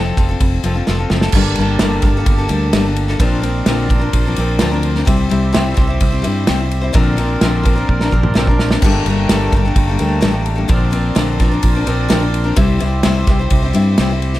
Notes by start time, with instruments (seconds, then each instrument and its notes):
Already playing: fingered electric bass F1, steel-string acoustic guitar F3 C4 F4 A4
0.17 fingered electric bass F1, steel-string acoustic guitar F3 C4 F4 A4, kick, ride
0.29 steel-string acoustic guitar C4 F4 A4
0.40 fingered electric bass F1, kick, ride
0.63 fingered electric bass F1, steel-string acoustic guitar F3 C4 F4 A4, ride
0.74 steel-string acoustic guitar C4 F4 A4
0.87 fingered electric bass F1, steel-string acoustic guitar F3 C4 F4 A4, snare
0.98 steel-string acoustic guitar C4 F4 A4
1.10 fingered electric bass F#1, steel-string acoustic guitar F3 C4 F4 A4, snare
1.21 steel-string acoustic guitar C4 F4 A4, snare
1.31 fingered electric bass G1, accordion G4 A#4 A5, kick, crash
1.35 steel-string acoustic guitar G2 D3 G3 A#3 D4 A4
1.55 fingered electric bass G1, steel-string acoustic guitar G3, ride
1.60 steel-string acoustic guitar A#3 D4 A4
1.79 fingered electric bass G1, steel-string acoustic guitar G2 D3 G3 A#3 D4 A4, snare, ride
2.02 fingered electric bass G1, steel-string acoustic guitar G3 A#3 D4, kick, snare, ride
2.08 steel-string acoustic guitar A4
2.17 steel-string acoustic guitar G3 A#3 D4 A4
2.26 fingered electric bass G1, kick, ride
2.38 steel-string acoustic guitar G3 A#3 D4 A4
2.48 fingered electric bass D2, steel-string acoustic guitar G3 A#3 D4 A4, ride
2.73 fingered electric bass G1, steel-string acoustic guitar G2 D3 G3 A#3 D4 A4, snare, ride
2.86 steel-string acoustic guitar G3 A#3 D4 A4
2.96 ride
3.08 steel-string acoustic guitar G3 A#3 D4 A4, snare
3.19 fingered electric bass A#1, steel-string acoustic guitar A#2 D3 F3 C4 D4 A#4, accordion D5 C6, kick, ride
3.42 steel-string acoustic guitar F3 C4 D4 A#4, ride
3.66 fingered electric bass A#1, steel-string acoustic guitar A#2 D3 F3 C4 D4 A#4, snare, ride
3.87 steel-string acoustic guitar F3 C4 D4 A#4, kick, ride
3.99 steel-string acoustic guitar F3 C4 D4 A#4
4.13 fingered electric bass A#1, kick, ride
4.25 steel-string acoustic guitar F3 C4 D4 A#4
4.36 fingered electric bass A#1, steel-string acoustic guitar F3 C4 D4 A#4, ride
4.59 fingered electric bass D2, steel-string acoustic guitar A#2 D3 F3 C4 D4 A#4, snare, ride
4.71 steel-string acoustic guitar F3 C4 D4 A#4
4.83 ride
4.95 steel-string acoustic guitar F3 C4 D4 A#4, snare
5.05 fingered electric bass C2, steel-string acoustic guitar C3 G3 C4 E4 C5, accordion G4 E5, kick, ride
5.30 fingered electric bass C2, steel-string acoustic guitar G3 C4 E4 C5, ride
5.53 fingered electric bass C2, steel-string acoustic guitar C3 G3 C4 E4 C5, snare, ride
5.74 fingered electric bass C2, steel-string acoustic guitar G3 C4 E4 C5, kick, snare, ride
5.87 steel-string acoustic guitar C4 E4 C5
6.01 fingered electric bass C2, kick, ride
6.11 steel-string acoustic guitar C4 E4 C5
6.22 steel-string acoustic guitar G3 C4 E4 C5, ride
6.27 fingered electric bass G2
6.47 fingered electric bass C2, steel-string acoustic guitar C3 G3 C4 E4 C5, snare, ride
6.59 steel-string acoustic guitar C4 E4 C5
6.71 ride
6.81 steel-string acoustic guitar C4 E4 C5
6.93 fingered electric bass A#1, steel-string acoustic guitar A#2 D3 F3 C4 D4 A#4, accordion A#4 D5 C6, kick, ride
7.17 steel-string acoustic guitar F3 C4 D4 A#4, ride
7.41 fingered electric bass A#1, steel-string acoustic guitar A#2 D3 F3 C4 D4 A#4, snare, ride
7.63 steel-string acoustic guitar F3 C4 D4 A#4, kick, ride
7.75 steel-string acoustic guitar F3 C4 D4 A#4
7.89 fingered electric bass A#1, kick
8.00 steel-string acoustic guitar F3 C4 D4 A#4, snare
8.11 fingered electric bass A#1, steel-string acoustic guitar F3 C4 D4 A#4, kick
8.23 mid tom
8.34 fingered electric bass A#1, steel-string acoustic guitar A#2 D3 F3 C4 D4 A#4, snare
8.47 steel-string acoustic guitar F3 C4 D4 A#4, kick
8.59 snare
8.71 steel-string acoustic guitar F3 C4 D4 A#4, snare
8.82 fingered electric bass G1, steel-string acoustic guitar G2 D3 G3 A#3 D4 A4, accordion A3 G5 A#5, kick, crash
9.06 fingered electric bass G1, steel-string acoustic guitar G3 A#3, ride
9.10 steel-string acoustic guitar D4 A4
9.29 fingered electric bass G1, steel-string acoustic guitar G2 D3 G3 A#3 D4 A4, snare, ride
9.52 fingered electric bass G1, steel-string acoustic guitar G3 A#3 D4, kick, ride
9.57 steel-string acoustic guitar A4
9.65 steel-string acoustic guitar G3 A#3 D4 A4
9.76 fingered electric bass G1, kick, ride
9.88 steel-string acoustic guitar G3 A#3 D4 A4
9.98 fingered electric bass D2, steel-string acoustic guitar G3 A#3 D4 A4, ride
10.21 fingered electric bass A1, steel-string acoustic guitar G2 D3 G3 A#3 D4 A4, snare, ride
10.32 steel-string acoustic guitar G3 A#3 D4 A4
10.46 ride
10.56 steel-string acoustic guitar G3 A#3 D4 A4
10.68 fingered electric bass A#1, steel-string acoustic guitar A#2 D3 F3 C4 D4 A#4, accordion A#4 D5 C6, kick, ride
10.91 steel-string acoustic guitar F3 C4 D4 A#4, ride
11.15 fingered electric bass A#1, steel-string acoustic guitar A#2 D3 F3 C4 D4 A#4, snare, ride
11.40 steel-string acoustic guitar F3 C4 D4 A#4, kick, snare, ride
11.51 steel-string acoustic guitar F3 C4 D4 A#4
11.63 fingered electric bass A#1, kick, ride
11.75 steel-string acoustic guitar F3 C4 D4 A#4
11.86 fingered electric bass A#1, steel-string acoustic guitar F3 C4 D4 A#4, ride
12.08 fingered electric bass A#1, steel-string acoustic guitar A#2 D3 F3 C4 D4 A#4, snare, ride
12.20 steel-string acoustic guitar F3 C4 D4 A#4
12.34 ride
12.44 steel-string acoustic guitar F3 C4 D4 A#4
12.56 fingered electric bass C2, steel-string acoustic guitar C3 G3 C4 E4 C5, accordion G4 E5, kick, ride
12.79 fingered electric bass C2, steel-string acoustic guitar G3 C4 E4 C5, ride
13.03 fingered electric bass C2, steel-string acoustic guitar C3 G3 C4 E4 C5, snare, ride
13.27 fingered electric bass C2, steel-string acoustic guitar G3 C4 E4 C5, kick, snare, ride
13.39 steel-string acoustic guitar C4 E4 C5
13.50 fingered electric bass C2, kick, ride
13.62 steel-string acoustic guitar C4 E4 C5
13.73 fingered electric bass G2, steel-string acoustic guitar G3 C4 E4 C5, ride
13.98 fingered electric bass C2, steel-string acoustic guitar C3 G3 C4 E4 C5, snare, ride
14.11 steel-string acoustic guitar C4 E4 C5
14.22 ride
14.33 steel-string acoustic guitar E4 C5, snare